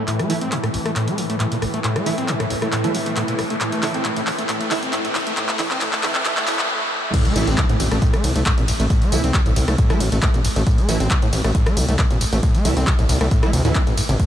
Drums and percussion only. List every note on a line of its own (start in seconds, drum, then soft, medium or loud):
0.08 clap soft
0.08 closed hi-hat medium
0.19 cross-stick medium
0.19 closed hi-hat medium
0.30 open hi-hat loud
0.41 closed hi-hat medium
0.52 clap medium
0.52 closed hi-hat loud
0.64 cross-stick medium
0.64 closed hi-hat medium
0.74 open hi-hat medium
0.86 cross-stick medium
0.86 closed hi-hat medium
0.96 clap medium
0.96 closed hi-hat medium
1.08 closed hi-hat medium
1.18 open hi-hat loud
1.30 closed hi-hat medium
1.40 clap medium
1.40 closed hi-hat medium
1.52 closed hi-hat medium
1.62 cross-stick medium
1.62 open hi-hat medium
1.74 closed hi-hat medium
1.84 clap medium
1.84 closed hi-hat loud
1.96 cross-stick medium
1.96 closed hi-hat medium
2.06 open hi-hat loud
2.18 closed hi-hat medium
2.28 clap medium
2.28 closed hi-hat loud
2.40 cross-stick medium
2.40 closed hi-hat medium
2.50 open hi-hat loud
2.62 cross-stick medium
2.62 closed hi-hat medium
2.73 clap medium
2.73 closed hi-hat medium
2.84 closed hi-hat medium
2.95 open hi-hat loud
3.06 closed hi-hat medium
3.17 clap medium
3.17 closed hi-hat medium
3.28 closed hi-hat medium
3.39 cross-stick medium
3.39 open hi-hat medium
3.50 closed hi-hat medium
3.61 clap medium
3.61 closed hi-hat medium
3.72 closed hi-hat medium
3.83 clap medium
3.83 open hi-hat loud
3.94 closed hi-hat medium
4.05 clap medium
4.05 closed hi-hat medium
4.17 closed hi-hat medium
4.27 clap medium
4.27 open hi-hat loud
4.39 closed hi-hat medium
4.49 clap medium
4.49 closed hi-hat medium
4.61 closed hi-hat medium
4.71 clap medium
4.71 open hi-hat loud
4.83 closed hi-hat medium
4.93 clap medium
4.93 closed hi-hat medium
5.05 closed hi-hat medium
5.15 clap medium
5.15 open hi-hat medium
5.27 closed hi-hat medium
5.37 clap medium
5.37 closed hi-hat medium
5.49 clap medium
5.49 closed hi-hat medium
5.59 clap medium
5.59 open hi-hat loud
5.71 clap medium
5.71 closed hi-hat medium
5.81 clap loud
5.81 closed hi-hat medium
5.93 clap medium
5.93 closed hi-hat medium
6.03 clap loud
6.03 open hi-hat loud
6.15 clap medium
6.15 closed hi-hat medium
6.25 clap loud
6.25 closed hi-hat medium
6.37 clap medium
6.37 closed hi-hat medium
6.48 clap loud
6.48 open hi-hat loud
6.59 clap medium
6.59 closed hi-hat medium
7.14 kick loud
7.14 closed hi-hat loud
7.14 crash loud
7.14 tambourine soft
7.25 closed hi-hat medium
7.25 tambourine soft
7.36 open hi-hat loud
7.36 ride medium
7.36 tambourine medium
7.47 closed hi-hat medium
7.47 tambourine soft
7.58 kick loud
7.58 clap loud
7.58 closed hi-hat loud
7.58 tambourine soft
7.69 closed hi-hat medium
7.69 tambourine soft
7.80 open hi-hat loud
7.80 ride medium
7.80 tambourine medium
7.92 cross-stick medium
7.92 closed hi-hat medium
7.92 tambourine soft
8.02 kick loud
8.02 closed hi-hat loud
8.02 tambourine soft
8.14 cross-stick medium
8.14 closed hi-hat medium
8.14 tambourine soft
8.24 open hi-hat loud
8.24 ride medium
8.24 tambourine medium
8.36 closed hi-hat medium
8.36 tambourine soft
8.46 kick loud
8.46 clap loud
8.46 closed hi-hat loud
8.46 tambourine soft
8.58 closed hi-hat medium
8.58 tambourine soft
8.68 open hi-hat medium
8.68 ride medium
8.68 tambourine medium
8.80 closed hi-hat medium
8.80 tambourine soft
8.90 kick loud
8.90 closed hi-hat medium
8.90 tambourine soft
9.02 closed hi-hat medium
9.02 tambourine soft
9.12 open hi-hat loud
9.12 ride medium
9.12 tambourine medium
9.24 closed hi-hat medium
9.24 tambourine soft
9.34 kick loud
9.34 clap loud
9.34 closed hi-hat loud
9.34 tambourine soft
9.46 closed hi-hat medium
9.46 tambourine soft
9.56 open hi-hat loud
9.56 ride medium
9.56 tambourine medium
9.68 cross-stick loud
9.68 closed hi-hat medium
9.68 tambourine soft
9.78 kick loud
9.78 closed hi-hat loud
9.78 tambourine soft
9.90 cross-stick loud
9.90 closed hi-hat medium
9.90 tambourine soft
10.00 open hi-hat loud
10.00 ride medium
10.00 tambourine medium
10.12 closed hi-hat medium
10.12 tambourine soft
10.23 kick loud
10.23 clap loud
10.23 closed hi-hat loud
10.23 tambourine soft
10.34 closed hi-hat medium
10.34 tambourine soft
10.45 open hi-hat loud
10.45 ride medium
10.45 tambourine medium
10.56 closed hi-hat medium
10.56 tambourine soft
10.67 kick loud
10.67 closed hi-hat medium
10.67 tambourine soft
10.78 closed hi-hat medium
10.78 tambourine soft
10.89 open hi-hat loud
10.89 ride medium
10.89 tambourine medium
11.00 closed hi-hat medium
11.00 tambourine soft
11.11 kick loud
11.11 clap loud
11.11 closed hi-hat loud
11.11 tambourine soft
11.22 closed hi-hat medium
11.22 tambourine soft
11.33 open hi-hat loud
11.33 ride medium
11.33 tambourine medium
11.44 cross-stick loud
11.44 closed hi-hat medium
11.44 tambourine soft
11.55 kick loud
11.55 closed hi-hat loud
11.55 tambourine soft
11.66 cross-stick loud
11.66 closed hi-hat medium
11.66 tambourine soft
11.77 open hi-hat loud
11.77 ride medium
11.77 tambourine medium
11.89 closed hi-hat medium
11.89 tambourine soft
11.99 kick loud
11.99 clap loud
11.99 closed hi-hat medium
11.99 tambourine soft
12.11 closed hi-hat medium
12.11 tambourine soft
12.21 open hi-hat loud
12.21 ride medium
12.21 tambourine medium
12.33 closed hi-hat medium
12.33 tambourine soft
12.43 kick loud
12.43 closed hi-hat medium
12.43 tambourine soft
12.55 closed hi-hat medium
12.55 tambourine soft
12.65 open hi-hat loud
12.65 ride medium
12.65 tambourine medium
12.77 closed hi-hat medium
12.77 tambourine soft
12.87 kick loud
12.87 clap loud
12.87 closed hi-hat medium
12.87 tambourine soft
12.99 closed hi-hat medium
12.99 tambourine soft
13.09 open hi-hat medium
13.09 ride medium
13.09 tambourine medium
13.21 cross-stick loud
13.21 closed hi-hat medium
13.21 tambourine soft
13.31 kick loud
13.31 closed hi-hat medium
13.31 tambourine soft
13.43 cross-stick loud
13.43 closed hi-hat medium
13.43 tambourine soft
13.53 open hi-hat loud
13.53 ride medium
13.53 tambourine medium
13.65 closed hi-hat medium
13.65 tambourine soft
13.75 kick loud
13.75 clap loud
13.75 closed hi-hat medium
13.75 tambourine soft
13.87 closed hi-hat medium
13.87 tambourine soft
13.97 open hi-hat loud
13.97 ride medium
13.97 tambourine medium
14.09 closed hi-hat medium
14.09 tambourine soft
14.20 kick loud
14.20 closed hi-hat medium
14.20 tambourine soft